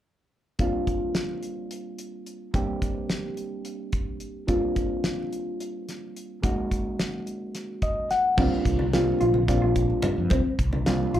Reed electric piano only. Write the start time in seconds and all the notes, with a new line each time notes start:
0.59 G3 A#3 C4 D4 F4
2.53 G3 A#3 C4 D4 G4
4.47 G3 A#3 C4 D4 F4
6.43 G#3 A#3 C#4 D#4 F#4
7.83 D#5
8.11 F#5
8.38 G3 A#3 C4 D4 F4
8.93 G3 A#3 C4 D4 F4
9.48 G3 A#3 C4 D4 F4
10.86 G3 A#3 C4 D4 F4